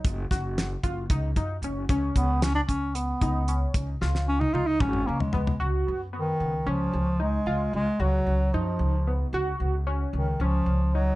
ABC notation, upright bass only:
X:1
M:7/8
L:1/16
Q:1/4=113
K:Cblyd
V:1 name="Upright bass" clef=bass
G,,,2 G,,,4 G,,,2 D,,2 G,,2 G,,,2 | D,,2 D,,4 D,,4 D,,4 | D,,2 D,,4 D,,2 A,,,2 D,2 D,,2 | D,,2 G,,4 D,,2 D,,2 D,,4 |
D,,2 D,, z D,,2 D,,2 G,,2 D,,4 | D,,2 D,,4 D,,2 D,,2 D,,4 |]